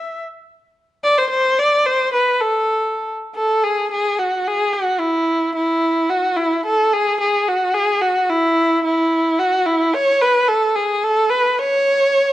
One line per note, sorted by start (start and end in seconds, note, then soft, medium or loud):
0.00 0.19 E5 medium
1.04 1.20 D5 loud
1.18 1.29 C5 loud
1.30 1.60 C5 loud
1.59 1.87 D5 loud
1.86 2.13 C5 loud
2.13 2.42 B4 medium
2.41 3.10 A4 medium
3.36 3.65 A4 medium
3.64 3.91 G#4 medium
3.91 4.20 G#4 medium
4.19 4.49 F#4 medium
4.47 4.74 G#4 medium
4.73 5.01 F#4 medium
5.00 5.54 E4 medium
5.55 6.11 E4 medium
6.10 6.38 F#4 medium
6.37 6.65 E4 medium
6.66 6.95 A4 medium
6.93 7.20 G#4 medium
7.20 7.50 G#4 medium
7.48 7.76 F#4 medium
7.74 8.03 G#4 medium
8.01 8.31 F#4 medium
8.30 8.84 E4 medium
8.84 9.40 E4 medium
9.39 9.68 F#4 medium
9.66 9.96 E4 medium
9.94 10.23 C#5 loud
10.22 10.50 B4 loud
10.48 10.77 A4 medium
10.76 11.05 G#4 medium
11.04 11.31 A4 loud
11.30 11.60 B4 loud
11.59 12.33 C#5 loud